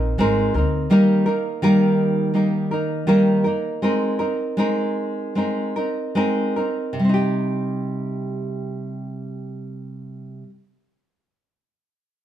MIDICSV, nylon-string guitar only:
0, 0, Header, 1, 2, 480
1, 0, Start_track
1, 0, Key_signature, -3, "minor"
1, 0, Tempo, 720288
1, 600, Time_signature, 4, 2, 24, 8
1, 2046, Tempo, 761421
1, 3486, Tempo, 815217
1, 4446, Tempo, 842697
1, 7440, End_track
2, 0, Start_track
2, 0, Title_t, "Nylon-string guitar"
2, 0, Program_c, 0, 24
2, 0, Note_on_c, 0, 60, 38
2, 0, Note_on_c, 0, 63, 43
2, 0, Note_on_c, 0, 70, 49
2, 117, Note_off_c, 0, 60, 0
2, 122, Note_off_c, 0, 70, 0
2, 124, Note_on_c, 0, 56, 75
2, 125, Note_off_c, 0, 63, 0
2, 125, Note_on_c, 0, 60, 81
2, 133, Note_on_c, 0, 63, 82
2, 137, Note_on_c, 0, 70, 80
2, 359, Note_off_c, 0, 70, 0
2, 362, Note_off_c, 0, 56, 0
2, 363, Note_off_c, 0, 60, 0
2, 367, Note_off_c, 0, 63, 0
2, 367, Note_on_c, 0, 70, 40
2, 383, Note_on_c, 0, 63, 40
2, 388, Note_on_c, 0, 60, 41
2, 599, Note_on_c, 0, 51, 69
2, 600, Note_off_c, 0, 63, 0
2, 601, Note_off_c, 0, 60, 0
2, 603, Note_off_c, 0, 70, 0
2, 603, Note_on_c, 0, 55, 78
2, 604, Note_on_c, 0, 58, 76
2, 608, Note_on_c, 0, 63, 81
2, 615, Note_on_c, 0, 70, 75
2, 831, Note_off_c, 0, 70, 0
2, 838, Note_off_c, 0, 51, 0
2, 839, Note_on_c, 0, 70, 52
2, 840, Note_off_c, 0, 55, 0
2, 840, Note_off_c, 0, 58, 0
2, 840, Note_off_c, 0, 63, 0
2, 848, Note_on_c, 0, 63, 42
2, 857, Note_on_c, 0, 58, 42
2, 1078, Note_off_c, 0, 70, 0
2, 1079, Note_off_c, 0, 58, 0
2, 1080, Note_on_c, 0, 51, 76
2, 1082, Note_off_c, 0, 63, 0
2, 1085, Note_on_c, 0, 55, 82
2, 1087, Note_on_c, 0, 58, 76
2, 1091, Note_on_c, 0, 63, 85
2, 1092, Note_on_c, 0, 70, 90
2, 1549, Note_off_c, 0, 55, 0
2, 1557, Note_on_c, 0, 55, 49
2, 1559, Note_off_c, 0, 58, 0
2, 1562, Note_off_c, 0, 63, 0
2, 1562, Note_on_c, 0, 58, 57
2, 1565, Note_on_c, 0, 63, 55
2, 1571, Note_off_c, 0, 70, 0
2, 1573, Note_on_c, 0, 70, 59
2, 1799, Note_off_c, 0, 70, 0
2, 1801, Note_off_c, 0, 55, 0
2, 1803, Note_off_c, 0, 58, 0
2, 1805, Note_off_c, 0, 63, 0
2, 1807, Note_on_c, 0, 70, 50
2, 1820, Note_on_c, 0, 63, 46
2, 1825, Note_on_c, 0, 58, 39
2, 2042, Note_off_c, 0, 51, 0
2, 2042, Note_off_c, 0, 58, 0
2, 2044, Note_on_c, 0, 51, 69
2, 2047, Note_on_c, 0, 55, 76
2, 2048, Note_off_c, 0, 70, 0
2, 2049, Note_off_c, 0, 63, 0
2, 2050, Note_on_c, 0, 58, 77
2, 2055, Note_on_c, 0, 70, 80
2, 2057, Note_on_c, 0, 63, 81
2, 2273, Note_off_c, 0, 70, 0
2, 2279, Note_off_c, 0, 51, 0
2, 2280, Note_off_c, 0, 55, 0
2, 2280, Note_on_c, 0, 70, 45
2, 2282, Note_off_c, 0, 58, 0
2, 2285, Note_off_c, 0, 63, 0
2, 2292, Note_on_c, 0, 63, 47
2, 2299, Note_on_c, 0, 58, 40
2, 2516, Note_off_c, 0, 70, 0
2, 2519, Note_on_c, 0, 56, 62
2, 2522, Note_off_c, 0, 58, 0
2, 2522, Note_off_c, 0, 63, 0
2, 2524, Note_on_c, 0, 60, 69
2, 2528, Note_on_c, 0, 63, 70
2, 2533, Note_on_c, 0, 70, 67
2, 2744, Note_off_c, 0, 70, 0
2, 2752, Note_off_c, 0, 63, 0
2, 2752, Note_on_c, 0, 70, 50
2, 2756, Note_off_c, 0, 56, 0
2, 2758, Note_off_c, 0, 60, 0
2, 2760, Note_on_c, 0, 63, 46
2, 2770, Note_on_c, 0, 60, 36
2, 2990, Note_off_c, 0, 60, 0
2, 2991, Note_on_c, 0, 56, 68
2, 2994, Note_off_c, 0, 63, 0
2, 2994, Note_off_c, 0, 70, 0
2, 2998, Note_on_c, 0, 60, 69
2, 3002, Note_on_c, 0, 63, 76
2, 3007, Note_on_c, 0, 70, 76
2, 3477, Note_off_c, 0, 56, 0
2, 3485, Note_on_c, 0, 56, 51
2, 3487, Note_off_c, 0, 60, 0
2, 3489, Note_on_c, 0, 60, 57
2, 3492, Note_off_c, 0, 70, 0
2, 3495, Note_off_c, 0, 63, 0
2, 3497, Note_on_c, 0, 63, 55
2, 3503, Note_on_c, 0, 70, 65
2, 3718, Note_off_c, 0, 70, 0
2, 3720, Note_off_c, 0, 56, 0
2, 3722, Note_off_c, 0, 60, 0
2, 3725, Note_on_c, 0, 70, 48
2, 3726, Note_off_c, 0, 63, 0
2, 3734, Note_on_c, 0, 63, 42
2, 3743, Note_on_c, 0, 60, 36
2, 3952, Note_off_c, 0, 60, 0
2, 3955, Note_on_c, 0, 56, 69
2, 3958, Note_off_c, 0, 63, 0
2, 3959, Note_on_c, 0, 60, 69
2, 3961, Note_off_c, 0, 70, 0
2, 3965, Note_on_c, 0, 63, 72
2, 3967, Note_on_c, 0, 70, 67
2, 4190, Note_off_c, 0, 70, 0
2, 4197, Note_on_c, 0, 70, 45
2, 4198, Note_off_c, 0, 56, 0
2, 4198, Note_off_c, 0, 63, 0
2, 4200, Note_off_c, 0, 60, 0
2, 4205, Note_on_c, 0, 63, 41
2, 4214, Note_on_c, 0, 60, 35
2, 4413, Note_on_c, 0, 48, 65
2, 4444, Note_off_c, 0, 70, 0
2, 4448, Note_off_c, 0, 63, 0
2, 4451, Note_on_c, 0, 55, 58
2, 4453, Note_off_c, 0, 60, 0
2, 4481, Note_on_c, 0, 60, 65
2, 4507, Note_on_c, 0, 63, 63
2, 4533, Note_on_c, 0, 67, 62
2, 6407, Note_off_c, 0, 48, 0
2, 6444, Note_off_c, 0, 55, 0
2, 6475, Note_off_c, 0, 60, 0
2, 6501, Note_off_c, 0, 63, 0
2, 6526, Note_off_c, 0, 67, 0
2, 7440, End_track
0, 0, End_of_file